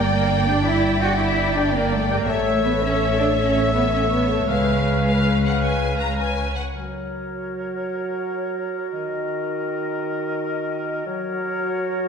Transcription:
0.00 2.24 G1 medium
0.00 0.11 A#3 medium
0.00 0.11 A#4 medium
0.00 2.24 D5 medium
0.00 2.24 G5 medium
0.00 2.28 G5 medium
0.12 0.47 A#3 medium
0.12 0.47 A#4 medium
0.47 0.65 D4 medium
0.47 0.55 G4 medium
0.47 0.54 D5 medium
0.47 0.54 G5 medium
0.66 1.02 E4 medium
0.66 1.03 E5 medium
1.01 1.19 F#4 medium
1.01 1.09 G4 medium
1.01 1.08 D5 medium
1.01 1.22 F#5 medium
1.01 1.08 G5 medium
1.20 1.55 E4 medium
1.20 1.58 E5 medium
1.55 1.74 D4 medium
1.55 1.62 G4 medium
1.55 1.62 D5 medium
1.55 1.74 D5 medium
1.55 1.62 G5 medium
1.73 1.92 A#3 medium
1.73 1.94 A#4 medium
1.91 2.10 A3 medium
1.91 2.10 A4 medium
2.09 2.28 A#3 medium
2.09 2.16 G4 medium
2.09 2.31 A#4 medium
2.09 2.16 D5 medium
2.09 2.16 G5 medium
2.28 4.49 A1 medium
2.28 2.64 A3 medium
2.28 2.79 A4 medium
2.28 4.49 A4 medium
2.28 2.64 A4 medium
2.28 2.79 C#5 medium
2.28 6.52 C#5 medium
2.28 2.79 C#5 medium
2.28 4.45 E5 medium
2.28 2.79 E5 medium
2.64 2.71 B3 medium
2.64 2.84 B4 medium
2.82 3.18 C#4 medium
2.82 3.35 A4 medium
2.82 3.35 C#5 medium
2.82 3.36 C#5 medium
2.82 3.18 C#5 medium
2.82 3.36 E5 medium
3.18 3.26 D4 medium
3.18 3.25 D5 medium
3.36 3.73 C#4 medium
3.36 3.91 A4 medium
3.36 3.91 C#5 medium
3.36 3.73 C#5 medium
3.36 3.93 C#5 medium
3.36 3.91 E5 medium
3.36 3.92 E5 medium
3.74 3.92 B3 medium
3.74 3.80 B4 medium
3.93 4.00 C#4 medium
3.93 4.48 A4 medium
3.93 3.99 C#5 medium
3.93 4.47 C#5 medium
3.93 4.49 C#5 soft
3.93 4.51 E5 medium
4.11 4.30 B3 medium
4.11 4.29 B4 medium
4.29 4.49 A3 medium
4.29 4.48 A4 medium
4.48 6.52 C#2 medium
4.48 6.14 G#3 medium
4.48 6.15 G#4 medium
4.48 6.56 B4 medium
4.48 6.52 B4 medium
4.48 6.53 B4 medium
4.48 6.52 C#5 medium
4.48 5.01 F5 medium
4.48 6.56 F5 medium
5.06 5.41 F5 medium
5.44 5.62 F#5 medium
5.62 5.99 G#5 medium
5.99 6.18 A#5 medium
6.17 6.55 G#5 medium
6.55 6.63 F#5 medium
6.74 8.87 F#3 soft
6.74 11.02 F#4 soft
6.74 11.02 A#4 soft
6.74 8.88 C#5 soft
8.91 11.02 D#3 medium
8.91 11.08 D#5 soft
11.06 12.08 F#3 medium
11.06 12.08 F#4 medium
11.06 12.08 A#4 medium
11.06 12.08 C#5 medium

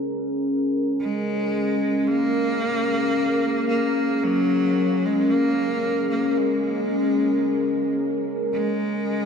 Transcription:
0.00 9.25 C#4 medium
0.00 9.25 G#4 medium
0.00 9.25 A#4 medium
1.01 2.08 G#3 medium
2.07 3.68 A#3 loud
3.69 4.25 A#3 medium
4.24 5.07 F#3 loud
5.06 5.32 G#3 medium
5.30 6.10 A#3 medium
6.10 6.39 A#3 medium
6.38 7.98 G#3 medium
8.53 9.25 G#3 loud

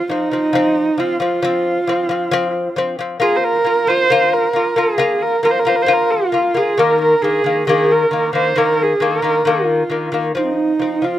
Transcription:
0.10 0.28 F3 medium
0.10 0.29 C4 medium
0.10 1.01 D#4 medium
0.31 0.50 F3 medium
0.31 0.51 C4 medium
0.53 0.89 F3 medium
0.53 0.91 C4 medium
0.98 1.16 F3 medium
0.98 1.17 C4 medium
0.98 1.21 F4 medium
1.20 1.38 F3 medium
1.20 1.39 C4 medium
1.24 2.74 F4 medium
1.42 1.79 F3 medium
1.42 1.80 C4 loud
1.87 2.06 F3 medium
1.87 2.06 C4 medium
2.09 2.27 F3 medium
2.09 2.28 C4 medium
2.31 2.68 F3 loud
2.31 2.69 C4 loud
2.76 2.94 F3 medium
2.76 2.95 C4 medium
2.99 3.17 F3 medium
2.99 3.18 C4 medium
3.20 3.56 A#3 medium
3.20 3.57 F4 medium
3.20 3.38 G#4 medium
3.36 3.45 C5 medium
3.44 3.89 A#4 medium
3.65 3.83 A#3 medium
3.65 3.84 F4 medium
3.87 4.06 A#3 medium
3.87 4.07 F4 medium
3.87 4.35 C5 loud
4.10 4.46 A#3 medium
4.10 4.47 F4 loud
4.33 4.79 A#4 medium
4.53 4.72 A#3 medium
4.53 4.73 F4 medium
4.76 4.95 A#3 medium
4.76 4.95 F4 medium
4.76 5.24 G#4 medium
4.98 5.34 A#3 medium
4.98 5.35 F4 loud
5.22 5.43 A#4 medium
5.43 5.61 A#3 medium
5.43 5.62 F4 medium
5.43 5.52 A#4 medium
5.51 5.61 C5 medium
5.59 5.69 A#4 medium
5.65 5.84 A#3 medium
5.65 5.84 F4 medium
5.65 5.77 C5 medium
5.76 5.83 A#4 medium
5.82 5.94 C5 medium
5.86 6.23 A#3 medium
5.86 6.24 F4 medium
5.93 6.12 A#4 medium
6.10 6.58 F4 medium
6.32 6.51 A#3 medium
6.32 6.51 F4 medium
6.54 6.73 A#3 medium
6.54 6.74 F4 medium
6.54 6.80 G#4 medium
6.78 7.14 D#3 medium
6.78 7.14 A#3 loud
6.78 7.01 A#4 medium
7.01 7.23 A#4 medium
7.22 7.40 D#3 medium
7.22 7.41 A#3 medium
7.22 7.67 G#4 medium
7.44 7.62 D#3 medium
7.44 7.63 A#3 medium
7.67 8.03 D#3 medium
7.67 8.04 A#3 medium
7.67 7.93 G#4 medium
7.91 8.34 A#4 medium
8.11 8.29 D#3 medium
8.11 8.30 A#3 medium
8.33 8.52 D#3 medium
8.33 8.53 A#3 medium
8.33 8.59 C5 medium
8.56 8.92 D#3 medium
8.56 8.93 A#3 loud
8.56 8.84 A#4 medium
8.83 9.06 G#4 medium
9.00 9.19 D#3 medium
9.00 9.20 A#3 medium
9.05 9.50 A#4 medium
9.22 9.41 D#3 medium
9.22 9.42 A#3 medium
9.45 9.82 D#3 medium
9.45 9.83 A#3 medium
9.45 10.15 F4 medium
9.90 10.08 D#3 medium
9.90 10.09 A#3 medium
10.12 10.31 D#3 medium
10.12 10.32 A#3 medium
10.35 10.71 F3 medium
10.35 10.72 C4 medium
10.35 10.46 D#4 medium
10.35 11.06 D#4 medium
10.44 10.54 C4 soft
10.52 11.05 D#4 medium
10.79 10.98 F3 medium
10.79 10.99 C4 medium
11.02 11.19 F3 medium
11.02 11.19 C4 soft
11.02 11.19 F4 medium

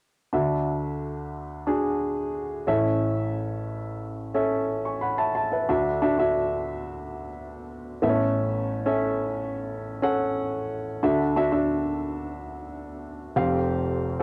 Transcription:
0.33 2.63 D2 medium
0.33 2.63 D3 soft
0.33 1.43 D4 medium
0.33 1.44 F#4 medium
0.33 1.44 E5 medium
1.67 2.67 D4 medium
1.67 2.67 F#4 soft
1.67 2.68 G#4 medium
2.67 5.31 A1 soft
2.67 5.31 A2 medium
2.67 3.78 C#4 medium
2.67 3.78 A4 medium
2.67 3.78 E5 medium
4.34 5.45 C#4 medium
4.34 5.45 A4 medium
4.34 4.68 E5 medium
4.85 5.01 G#5 soft
4.85 5.01 C#6 soft
5.01 5.18 F#5 soft
5.01 5.17 B5 medium
5.18 5.34 E5 soft
5.18 5.34 A5 medium
5.35 5.50 E5 soft
5.35 5.51 A5 medium
5.52 5.84 B4 soft
5.52 5.68 E5 soft
5.69 7.99 D2 medium
5.69 7.99 D3 medium
5.69 5.96 D4 medium
5.69 5.96 F#4 medium
5.69 5.97 E5 medium
6.02 6.16 D4 medium
6.02 6.16 F#4 medium
6.02 6.16 E5 medium
6.19 7.29 D4 medium
6.19 7.29 F#4 medium
6.19 7.29 E5 medium
8.02 10.66 A1 medium
8.02 10.66 A2 medium
8.02 8.09 B3 medium
8.02 8.71 A4 medium
8.02 8.72 E5 medium
8.09 8.75 C#4 medium
8.86 9.82 C#4 medium
8.86 9.82 A4 medium
8.86 9.83 E5 medium
10.02 10.85 C#4 medium
10.02 10.86 A4 medium
10.02 10.86 F#5 medium
11.03 13.33 D2 medium
11.03 13.33 D3 medium
11.03 11.31 D4 medium
11.03 11.31 F#4 medium
11.03 11.31 E5 medium
11.36 11.50 D4 medium
11.36 11.50 F#4 medium
11.36 11.51 E5 medium
11.52 12.63 D4 medium
11.52 12.63 F#4 medium
11.52 12.63 E5 medium
13.36 14.23 F1 medium
13.36 14.23 F2 medium
13.36 14.06 C4 medium
13.36 14.06 G4 medium
13.36 14.06 F5 medium
14.20 14.23 C4 medium

